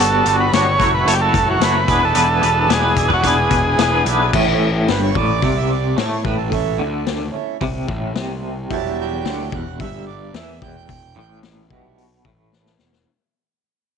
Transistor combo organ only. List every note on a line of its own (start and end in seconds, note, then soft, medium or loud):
0.00 0.36 A4 medium
0.40 0.52 B4 medium
0.54 0.91 C#5 medium
0.94 1.08 B4 medium
1.08 1.15 A4 medium
1.13 1.21 G4 medium
1.21 1.49 A4 medium
1.51 1.63 F#4 medium
1.64 2.05 B4 medium
2.05 2.59 A4 medium
2.61 2.72 A4 medium
2.73 3.10 G#4 medium
3.14 3.27 F#4 medium
3.27 4.04 G#4 medium